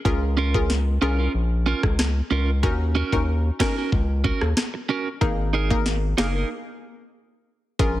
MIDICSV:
0, 0, Header, 1, 6, 480
1, 0, Start_track
1, 0, Tempo, 645161
1, 39, Time_signature, 4, 2, 24, 8
1, 5952, End_track
2, 0, Start_track
2, 0, Title_t, "Clean electric guitar"
2, 0, Program_c, 0, 27
2, 276, Note_on_c, 0, 61, 83
2, 282, Note_on_c, 0, 65, 85
2, 287, Note_on_c, 0, 70, 94
2, 413, Note_off_c, 0, 61, 0
2, 416, Note_off_c, 0, 65, 0
2, 419, Note_off_c, 0, 70, 0
2, 756, Note_on_c, 0, 61, 88
2, 762, Note_on_c, 0, 65, 87
2, 767, Note_on_c, 0, 70, 95
2, 874, Note_off_c, 0, 70, 0
2, 881, Note_off_c, 0, 65, 0
2, 883, Note_on_c, 0, 70, 60
2, 886, Note_off_c, 0, 61, 0
2, 890, Note_on_c, 0, 65, 49
2, 895, Note_on_c, 0, 61, 50
2, 979, Note_off_c, 0, 70, 0
2, 983, Note_off_c, 0, 65, 0
2, 985, Note_off_c, 0, 61, 0
2, 1236, Note_on_c, 0, 61, 89
2, 1242, Note_on_c, 0, 65, 88
2, 1247, Note_on_c, 0, 70, 92
2, 1354, Note_off_c, 0, 70, 0
2, 1362, Note_off_c, 0, 65, 0
2, 1373, Note_off_c, 0, 61, 0
2, 1715, Note_on_c, 0, 61, 89
2, 1721, Note_on_c, 0, 65, 87
2, 1726, Note_on_c, 0, 70, 97
2, 1853, Note_off_c, 0, 61, 0
2, 1856, Note_off_c, 0, 65, 0
2, 1859, Note_off_c, 0, 70, 0
2, 2195, Note_on_c, 0, 61, 90
2, 2201, Note_on_c, 0, 66, 88
2, 2206, Note_on_c, 0, 70, 91
2, 2333, Note_off_c, 0, 61, 0
2, 2336, Note_off_c, 0, 66, 0
2, 2338, Note_off_c, 0, 70, 0
2, 2675, Note_on_c, 0, 61, 77
2, 2681, Note_on_c, 0, 66, 84
2, 2687, Note_on_c, 0, 70, 88
2, 2794, Note_off_c, 0, 70, 0
2, 2800, Note_off_c, 0, 66, 0
2, 2803, Note_on_c, 0, 70, 56
2, 2806, Note_off_c, 0, 61, 0
2, 2809, Note_on_c, 0, 66, 55
2, 2815, Note_on_c, 0, 61, 47
2, 2900, Note_off_c, 0, 70, 0
2, 2903, Note_off_c, 0, 66, 0
2, 2905, Note_off_c, 0, 61, 0
2, 3156, Note_on_c, 0, 61, 80
2, 3163, Note_on_c, 0, 66, 90
2, 3168, Note_on_c, 0, 70, 92
2, 3293, Note_off_c, 0, 61, 0
2, 3297, Note_off_c, 0, 66, 0
2, 3299, Note_off_c, 0, 70, 0
2, 3636, Note_on_c, 0, 61, 86
2, 3643, Note_on_c, 0, 66, 88
2, 3648, Note_on_c, 0, 70, 88
2, 3774, Note_off_c, 0, 61, 0
2, 3777, Note_off_c, 0, 66, 0
2, 3779, Note_off_c, 0, 70, 0
2, 4116, Note_on_c, 0, 63, 78
2, 4122, Note_on_c, 0, 68, 88
2, 4127, Note_on_c, 0, 70, 88
2, 4253, Note_off_c, 0, 63, 0
2, 4256, Note_off_c, 0, 68, 0
2, 4259, Note_off_c, 0, 70, 0
2, 4595, Note_on_c, 0, 63, 88
2, 4601, Note_on_c, 0, 68, 92
2, 4606, Note_on_c, 0, 70, 96
2, 4715, Note_off_c, 0, 70, 0
2, 4721, Note_off_c, 0, 68, 0
2, 4724, Note_on_c, 0, 70, 52
2, 4726, Note_off_c, 0, 63, 0
2, 4730, Note_on_c, 0, 68, 55
2, 4735, Note_on_c, 0, 63, 53
2, 4820, Note_off_c, 0, 70, 0
2, 4823, Note_off_c, 0, 68, 0
2, 4826, Note_off_c, 0, 63, 0
2, 5952, End_track
3, 0, Start_track
3, 0, Title_t, "Synth pluck"
3, 0, Program_c, 1, 84
3, 37, Note_on_c, 1, 61, 97
3, 38, Note_on_c, 1, 65, 91
3, 40, Note_on_c, 1, 68, 89
3, 42, Note_on_c, 1, 70, 107
3, 375, Note_off_c, 1, 61, 0
3, 375, Note_off_c, 1, 65, 0
3, 376, Note_off_c, 1, 68, 0
3, 377, Note_off_c, 1, 70, 0
3, 405, Note_on_c, 1, 61, 82
3, 407, Note_on_c, 1, 65, 76
3, 408, Note_on_c, 1, 68, 72
3, 410, Note_on_c, 1, 70, 88
3, 731, Note_off_c, 1, 61, 0
3, 732, Note_off_c, 1, 65, 0
3, 733, Note_off_c, 1, 68, 0
3, 734, Note_off_c, 1, 70, 0
3, 757, Note_on_c, 1, 61, 79
3, 758, Note_on_c, 1, 65, 69
3, 759, Note_on_c, 1, 68, 73
3, 761, Note_on_c, 1, 70, 90
3, 980, Note_off_c, 1, 61, 0
3, 980, Note_off_c, 1, 65, 0
3, 981, Note_off_c, 1, 68, 0
3, 982, Note_off_c, 1, 70, 0
3, 1956, Note_on_c, 1, 61, 97
3, 1958, Note_on_c, 1, 63, 89
3, 1960, Note_on_c, 1, 66, 86
3, 1961, Note_on_c, 1, 70, 110
3, 2294, Note_off_c, 1, 61, 0
3, 2295, Note_off_c, 1, 63, 0
3, 2296, Note_off_c, 1, 66, 0
3, 2297, Note_off_c, 1, 70, 0
3, 2325, Note_on_c, 1, 61, 82
3, 2326, Note_on_c, 1, 63, 77
3, 2328, Note_on_c, 1, 66, 72
3, 2329, Note_on_c, 1, 70, 88
3, 2651, Note_off_c, 1, 61, 0
3, 2652, Note_off_c, 1, 63, 0
3, 2653, Note_off_c, 1, 66, 0
3, 2653, Note_off_c, 1, 70, 0
3, 2678, Note_on_c, 1, 61, 79
3, 2680, Note_on_c, 1, 63, 74
3, 2682, Note_on_c, 1, 66, 71
3, 2683, Note_on_c, 1, 70, 84
3, 2901, Note_off_c, 1, 61, 0
3, 2901, Note_off_c, 1, 63, 0
3, 2902, Note_off_c, 1, 66, 0
3, 2903, Note_off_c, 1, 70, 0
3, 3877, Note_on_c, 1, 58, 97
3, 3878, Note_on_c, 1, 63, 90
3, 3880, Note_on_c, 1, 68, 93
3, 3881, Note_on_c, 1, 70, 108
3, 4214, Note_off_c, 1, 58, 0
3, 4215, Note_off_c, 1, 63, 0
3, 4216, Note_off_c, 1, 68, 0
3, 4217, Note_off_c, 1, 70, 0
3, 4245, Note_on_c, 1, 58, 83
3, 4246, Note_on_c, 1, 63, 70
3, 4247, Note_on_c, 1, 68, 74
3, 4249, Note_on_c, 1, 70, 91
3, 4571, Note_off_c, 1, 58, 0
3, 4572, Note_off_c, 1, 63, 0
3, 4572, Note_off_c, 1, 68, 0
3, 4573, Note_off_c, 1, 70, 0
3, 4597, Note_on_c, 1, 58, 78
3, 4599, Note_on_c, 1, 63, 69
3, 4600, Note_on_c, 1, 68, 70
3, 4601, Note_on_c, 1, 70, 86
3, 4820, Note_off_c, 1, 58, 0
3, 4821, Note_off_c, 1, 63, 0
3, 4821, Note_off_c, 1, 68, 0
3, 4822, Note_off_c, 1, 70, 0
3, 5798, Note_on_c, 1, 61, 95
3, 5799, Note_on_c, 1, 65, 89
3, 5801, Note_on_c, 1, 68, 87
3, 5802, Note_on_c, 1, 70, 109
3, 5952, Note_off_c, 1, 61, 0
3, 5952, Note_off_c, 1, 65, 0
3, 5952, Note_off_c, 1, 68, 0
3, 5952, Note_off_c, 1, 70, 0
3, 5952, End_track
4, 0, Start_track
4, 0, Title_t, "Analog synth bass"
4, 0, Program_c, 2, 38
4, 39, Note_on_c, 2, 37, 103
4, 729, Note_off_c, 2, 37, 0
4, 758, Note_on_c, 2, 36, 102
4, 950, Note_off_c, 2, 36, 0
4, 998, Note_on_c, 2, 34, 87
4, 1292, Note_off_c, 2, 34, 0
4, 1364, Note_on_c, 2, 37, 87
4, 1647, Note_off_c, 2, 37, 0
4, 1719, Note_on_c, 2, 37, 96
4, 1959, Note_on_c, 2, 39, 101
4, 1970, Note_off_c, 2, 37, 0
4, 2252, Note_off_c, 2, 39, 0
4, 2325, Note_on_c, 2, 39, 102
4, 2607, Note_off_c, 2, 39, 0
4, 2919, Note_on_c, 2, 37, 95
4, 3212, Note_off_c, 2, 37, 0
4, 3286, Note_on_c, 2, 39, 81
4, 3376, Note_off_c, 2, 39, 0
4, 3879, Note_on_c, 2, 32, 99
4, 4569, Note_off_c, 2, 32, 0
4, 4599, Note_on_c, 2, 30, 100
4, 4790, Note_off_c, 2, 30, 0
4, 5799, Note_on_c, 2, 34, 98
4, 5952, Note_off_c, 2, 34, 0
4, 5952, End_track
5, 0, Start_track
5, 0, Title_t, "Muted clean electric guitar strokes"
5, 1363, Note_on_c, 9, 29, 51
5, 1437, Note_off_c, 9, 29, 0
5, 3524, Note_on_c, 9, 29, 43
5, 3599, Note_off_c, 9, 29, 0
5, 5952, End_track
6, 0, Start_track
6, 0, Title_t, "Drums"
6, 39, Note_on_c, 9, 36, 105
6, 113, Note_off_c, 9, 36, 0
6, 405, Note_on_c, 9, 36, 82
6, 480, Note_off_c, 9, 36, 0
6, 519, Note_on_c, 9, 38, 66
6, 593, Note_off_c, 9, 38, 0
6, 1364, Note_on_c, 9, 36, 93
6, 1364, Note_on_c, 9, 37, 97
6, 1439, Note_off_c, 9, 36, 0
6, 1439, Note_off_c, 9, 37, 0
6, 1480, Note_on_c, 9, 38, 113
6, 1485, Note_on_c, 9, 37, 89
6, 1554, Note_off_c, 9, 38, 0
6, 1560, Note_off_c, 9, 37, 0
6, 1959, Note_on_c, 9, 36, 106
6, 2033, Note_off_c, 9, 36, 0
6, 2325, Note_on_c, 9, 36, 82
6, 2399, Note_off_c, 9, 36, 0
6, 2679, Note_on_c, 9, 36, 89
6, 2680, Note_on_c, 9, 38, 110
6, 2685, Note_on_c, 9, 37, 91
6, 2753, Note_off_c, 9, 36, 0
6, 2754, Note_off_c, 9, 38, 0
6, 2759, Note_off_c, 9, 37, 0
6, 2919, Note_on_c, 9, 36, 89
6, 2993, Note_off_c, 9, 36, 0
6, 3158, Note_on_c, 9, 36, 90
6, 3232, Note_off_c, 9, 36, 0
6, 3284, Note_on_c, 9, 37, 98
6, 3358, Note_off_c, 9, 37, 0
6, 3399, Note_on_c, 9, 38, 110
6, 3404, Note_on_c, 9, 37, 85
6, 3473, Note_off_c, 9, 38, 0
6, 3479, Note_off_c, 9, 37, 0
6, 3879, Note_on_c, 9, 36, 108
6, 3953, Note_off_c, 9, 36, 0
6, 4245, Note_on_c, 9, 36, 80
6, 4319, Note_off_c, 9, 36, 0
6, 4358, Note_on_c, 9, 38, 63
6, 4433, Note_off_c, 9, 38, 0
6, 4600, Note_on_c, 9, 38, 113
6, 4605, Note_on_c, 9, 37, 90
6, 4674, Note_off_c, 9, 38, 0
6, 4680, Note_off_c, 9, 37, 0
6, 5799, Note_on_c, 9, 36, 107
6, 5799, Note_on_c, 9, 42, 70
6, 5873, Note_off_c, 9, 36, 0
6, 5873, Note_off_c, 9, 42, 0
6, 5952, End_track
0, 0, End_of_file